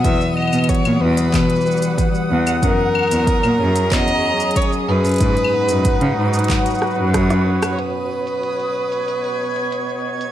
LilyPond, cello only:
\new Staff \with { instrumentName = "Cello" } { \clef bass \time 4/4 \key b \major \tempo 4 = 93 e,16 r8 b,16 r16 ais,16 e,16 r16 b,16 r4 r16 e,16 r16 | fis,16 r8 e,16 r16 ais,16 fis,16 r16 e,16 r4 r16 fis,16 r16 | gis,16 r8 fis,16 r16 cis16 gis,16 r4 fis,4 r16 | r1 | }